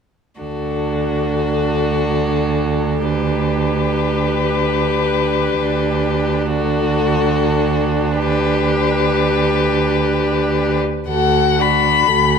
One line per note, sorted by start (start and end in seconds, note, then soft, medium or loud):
0.40 5.58 D2 soft
0.40 5.57 D4 soft
0.40 3.00 F#4 soft
0.40 3.04 A4 soft
3.03 6.48 G4 soft
3.03 6.49 B4 soft
5.61 10.80 D2 soft
5.61 10.79 D4 soft
6.47 8.18 F#4 soft
6.47 8.19 A4 soft
8.19 10.80 G4 soft
8.19 10.80 B4 soft
11.08 11.98 D2 soft
11.08 11.62 F#4 soft
11.08 11.61 A4 soft
11.08 11.63 F#5 medium
11.59 12.10 D4 soft
11.59 12.09 F#4 soft
11.59 12.39 B5 medium
12.08 12.39 D2 soft
12.08 12.39 F#4 soft
12.08 12.39 A4 soft